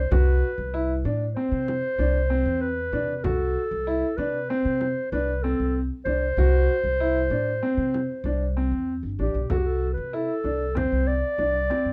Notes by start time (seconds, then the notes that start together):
Already playing: C5
0.11 C2 F#4 B4, frame drum
0.58 C2
0.74 E4
1.05 A2 D4
1.35 C4 C5, frame drum
1.52 C3
1.68 frame drum
1.98 C2 D4
2.30 C4
2.46 E2
2.61 B4, frame drum
2.92 C3 D4
3.16 B4
3.24 C2 F#4 A4, frame drum
3.71 C2
3.87 E4
4.17 C3 D4 B4
4.49 C4 C5, frame drum
4.65 C3
4.81 frame drum
5.12 C2 D4 B4
5.43 C4 A4
5.59 C2
5.76 frame drum
6.05 C2 D4 C5
6.37 C2 F#4, frame drum
6.69 frame drum
6.84 C2
7.00 E4
7.30 A2 D4
7.63 C4
7.77 C3
7.94 frame drum
8.24 C2 D4
8.57 C4, frame drum
8.72 E2
9.03 G1
9.19 A1 D4 G4
9.34 B1
9.50 C2 F#4 A4, frame drum
9.58 G4
9.66 A4
9.93 B4
9.97 C3
10.13 E4 A4
10.44 C2 D4, frame drum
10.75 C4 C5, frame drum
10.92 C2
11.07 D5
11.38 C2 D4
11.70 C4, frame drum
11.85 G2